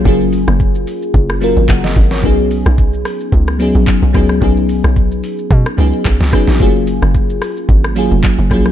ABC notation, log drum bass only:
X:1
M:4/4
L:1/16
Q:"Swing 16ths" 1/4=110
K:F#
V:1 name="Log drum bass" clef=bass
F,,,3 F,,,3 z2 F,,,3 G,,, F,,,2 G,,,2 | B,,,3 B,,,3 z2 C,,3 A,,, z B,,, C,,2 | B,,,3 B,,,3 z2 B,, z C,, z B,,, C,, z A,,, | F,,,3 F,,,3 z2 G,,,3 E,,, z F,,, A,,,2 |]